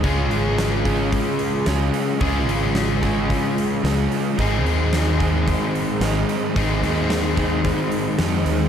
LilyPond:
<<
  \new Staff \with { instrumentName = "Overdriven electric guitar" } { \time 4/4 \key des \major \tempo 4 = 110 <des aes des' f' aes'>1 | <des aes des' f' aes'>1 | <aes, ees aes c' ees' aes'>1 | <aes, ees aes c' ees' aes'>1 | }
  \new Staff \with { instrumentName = "Overdriven electric guitar" } { \time 4/4 \key des \major <des aes des' f' aes'>4. <des aes des' f' aes'>4. <des aes des' f' aes'>4 | <des aes des' f' aes'>4. <des aes des' f' aes'>4. <des aes des' f' aes'>4 | <aes, ees aes c' ees' aes'>4. <aes, ees aes c' ees' aes'>4. <aes, ees aes c' ees' aes'>4 | <aes, ees aes c' ees' aes'>4. <aes, ees aes c' ees' aes'>4. <aes, ees aes c' ees' aes'>4 | }
  \new Staff \with { instrumentName = "Fingered electric bass" } { \clef bass \time 4/4 \key des \major des,8 aes,,2 r8 des,8 r8 | des,8 aes,,2 r8 des,8 r8 | aes,,8 ees,2 r8 aes,,8 r8 | aes,,8 ees,2 r8 f,8 ees,8 | }
  \new DrumStaff \with { instrumentName = "Drums" } \drummode { \time 4/4 <hho bd>8 hho8 <hho sn>8 <hho bd>8 <hho bd>8 hho8 <hho sn>8 hho8 | <hho bd>8 hho8 <hho sn>8 <hho bd>8 <hho bd>8 hho8 <hho sn>8 hho8 | <hho bd>8 hho8 <hho sn>8 <hho bd>8 <hho bd>8 hho8 <hho sn>8 hho8 | <hho bd>8 hho8 <hho sn>8 <hho bd>8 <hho bd>8 hho8 <hho sn>8 hho8 | }
>>